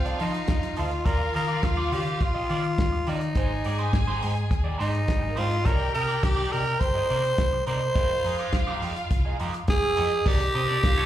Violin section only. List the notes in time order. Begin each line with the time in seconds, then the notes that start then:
Already playing: F4 F5
1.06 F4 F5
3.35 G#4 G#5
5.15 G3 G4
5.23 G#3 G#4
5.29 A#3 A#4
5.36 C4 C5
5.43 D4 D5
5.50 D#4 D#5
5.57 F4 F5
5.63 G4 G5
7.95 F4 F5
10.55 C4 C5
10.69 D4 D5
10.83 F4 F5
10.97 D#4 D#5